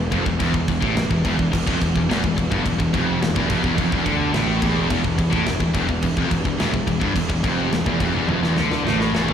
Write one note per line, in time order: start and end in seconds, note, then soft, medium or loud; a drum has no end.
0.00 0.10 E1 medium
0.00 9.33 E3 medium
0.00 9.33 B3 medium
0.00 9.33 G4 medium
0.00 9.33 B4 medium
0.11 0.25 F1 medium
0.11 0.25 F2 loud
0.11 kick loud
0.11 crash medium
0.26 0.39 E1 medium
0.26 0.38 E2 medium
0.26 kick medium
0.39 0.53 E1 loud
0.39 0.53 E2 loud
0.39 kick medium
0.39 crash medium
0.54 0.67 E1 medium
0.54 0.68 E2 medium
0.54 kick medium
0.68 0.82 E1 medium
0.68 0.83 E2 medium
0.68 kick medium
0.68 crash medium
0.81 0.96 A1 medium
0.81 0.95 A2 loud
0.81 kick medium
0.95 1.10 E1 medium
0.95 1.09 E2 medium
0.95 snare loud
0.95 crash medium
1.10 1.24 E1 medium
1.10 1.24 E2 medium
1.10 kick medium
1.25 1.38 E1 loud
1.25 1.37 E2 loud
1.25 kick medium
1.25 crash medium
1.38 1.52 E1 medium
1.38 1.50 E2 medium
1.38 kick medium
1.52 1.67 E1 medium
1.52 1.66 E2 medium
1.52 kick medium
1.52 crash medium
1.66 1.80 F1 loud
1.66 1.80 F2 loud
1.66 kick medium
1.80 1.94 E1 medium
1.80 1.95 E2 medium
1.80 kick medium
1.80 crash medium
1.96 2.09 E1 medium
1.96 2.08 E2 medium
1.96 kick medium
2.09 2.23 E1 medium
2.09 2.23 E2 loud
2.09 snare loud
2.09 crash medium
2.24 2.37 E1 medium
2.24 2.35 E2 medium
2.24 kick loud
2.36 2.51 E1 medium
2.36 2.50 E2 medium
2.36 kick loud
2.36 crash medium
2.51 2.65 G1 loud
2.51 2.64 G2 loud
2.51 kick medium
2.65 2.79 E1 medium
2.65 2.78 E2 medium
2.65 kick loud
2.65 crash medium
2.79 2.93 E1 medium
2.79 2.93 E2 medium
2.79 kick medium
2.93 3.20 F1 loud
2.93 3.21 F2 loud
2.93 kick medium
2.93 crash medium
3.22 3.35 E1 medium
3.22 3.35 E2 medium
3.22 snare loud
3.22 crash medium
3.35 3.49 E1 medium
3.35 3.49 E2 loud
3.35 kick loud
3.49 3.63 F1 medium
3.49 3.63 F2 medium
3.49 kick medium
3.49 crash medium
3.64 3.77 E1 medium
3.64 3.77 E2 loud
3.64 kick medium
3.77 3.91 F1 loud
3.77 3.91 F2 loud
3.77 kick loud
3.77 crash medium
3.92 4.05 E1 loud
3.92 4.06 E2 loud
3.92 kick medium
4.05 4.32 D2 medium
4.05 4.32 D3 loud
4.05 kick medium
4.05 crash medium
4.32 4.60 A1 medium
4.32 4.61 A2 loud
4.32 snare loud
4.32 crash medium
4.60 4.89 E1 medium
4.60 4.88 E2 loud
4.60 kick loud
4.60 crash medium
4.90 5.04 E1 medium
4.90 5.02 E2 loud
4.90 kick loud
4.90 crash medium
5.04 5.18 E1 medium
5.04 5.17 E2 medium
5.04 kick medium
5.18 5.32 E1 medium
5.18 5.32 E2 medium
5.18 kick medium
5.18 crash medium
5.31 5.46 A1 loud
5.31 5.45 A2 loud
5.31 kick medium
5.46 5.60 E1 medium
5.46 5.59 E2 medium
5.46 snare loud
5.46 crash medium
5.60 5.74 E1 medium
5.60 5.73 E2 medium
5.60 kick medium
5.74 5.88 E1 loud
5.74 5.87 E2 loud
5.74 kick loud
5.74 crash medium
5.88 6.02 E1 medium
5.88 6.02 E2 medium
5.88 kick medium
6.03 6.16 E1 medium
6.03 6.17 E2 medium
6.03 kick loud
6.03 crash medium
6.17 6.30 F1 loud
6.17 6.30 F2 loud
6.17 kick medium
6.31 6.44 E1 medium
6.31 6.44 E2 medium
6.31 kick medium
6.31 crash medium
6.45 6.58 E1 medium
6.45 6.59 E2 medium
6.45 kick medium
6.60 6.73 E1 loud
6.60 6.72 E2 loud
6.60 snare loud
6.60 crash medium
6.73 6.87 E1 medium
6.73 6.86 E2 medium
6.73 kick medium
6.87 7.00 E1 medium
6.87 7.00 E2 medium
6.87 kick medium
6.87 crash medium
7.01 7.15 G1 loud
7.01 7.15 G2 loud
7.01 kick loud
7.16 7.29 E1 medium
7.16 7.27 E2 medium
7.16 kick medium
7.16 crash medium
7.29 7.43 E1 medium
7.29 7.43 E2 medium
7.29 kick medium
7.43 7.70 F1 loud
7.43 7.71 F2 medium
7.43 kick medium
7.43 crash medium
7.72 7.85 E1 medium
7.72 7.85 E2 medium
7.72 snare loud
7.72 crash medium
7.86 7.99 E1 medium
7.86 7.99 E2 loud
7.86 kick loud
8.00 8.14 F1 medium
8.00 8.13 F2 loud
8.00 kick medium
8.00 crash medium
8.15 8.28 E1 loud
8.15 8.28 E2 loud
8.28 8.40 F1 loud
8.28 8.42 F2 loud
8.28 high tom medium
8.41 8.55 E1 loud
8.41 8.56 E2 loud
8.41 snare medium
8.55 8.82 D2 medium
8.55 8.84 D3 loud
8.55 snare medium
8.72 snare medium
8.84 9.11 A1 medium
8.84 9.12 A2 loud
8.84 snare medium
9.01 snare medium
9.13 9.33 E1 medium
9.13 9.33 E2 loud
9.13 snare medium
9.29 floor tom loud